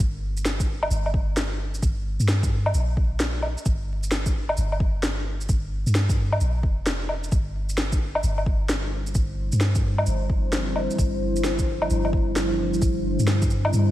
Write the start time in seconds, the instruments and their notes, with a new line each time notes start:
0.00 808-style bass G1, kick
0.37 shaker
0.45 snare, shaker
0.60 kick, shaker
0.83 low woodblock
0.91 808-style bass G1, shaker
1.06 low woodblock
1.14 kick
1.37 snare, shaker
1.74 shaker
1.82 808-style bass G1, kick, shaker
2.20 808-style bass G2, shaker
2.28 snare, shaker
2.43 kick, shaker
2.66 low woodblock
2.74 808-style bass A#1, shaker
2.97 kick
3.20 snare, shaker
3.42 low woodblock
3.58 shaker
3.65 808-style bass G1, kick, shaker
4.03 shaker
4.11 snare, shaker
4.26 kick, shaker
4.49 low woodblock
4.57 808-style bass G1, shaker
4.72 low woodblock
4.80 kick
5.03 snare, shaker
5.41 shaker
5.49 808-style bass G1, kick, shaker
5.86 808-style bass G2, shaker
5.95 snare, shaker
6.09 kick, shaker
6.32 low woodblock
6.41 808-style bass A#1, shaker
6.63 808-style bass F1, kick
6.87 snare, shaker
7.09 low woodblock
7.24 shaker
7.32 808-style bass G1, ambient pad F3 G3 D4 E4 C5, kick, shaker
7.69 shaker
7.78 snare, shaker
7.92 kick, shaker
8.15 low woodblock
8.23 808-style bass G1, shaker
8.38 low woodblock
8.46 kick
8.69 snare, shaker
9.07 shaker
9.15 808-style bass G1, kick, shaker
9.52 808-style bass G2, shaker
9.61 snare, shaker
9.75 kick, shaker
9.98 low woodblock
10.06 808-style bass G1, shaker
10.30 kick
10.53 snare, shaker
10.76 low woodblock
10.90 shaker
10.98 808-style bass G1, kick, shaker
11.36 shaker
11.44 snare, shaker
11.59 kick, shaker
11.82 low woodblock
11.90 808-style bass G1, shaker
12.05 low woodblock
12.13 kick
12.36 snare, shaker
12.74 shaker
12.82 808-style bass G1, kick, shaker
13.19 808-style bass G2, shaker
13.27 snare, shaker
13.42 kick, shaker
13.50 shaker
13.65 low woodblock
13.73 808-style bass G2, shaker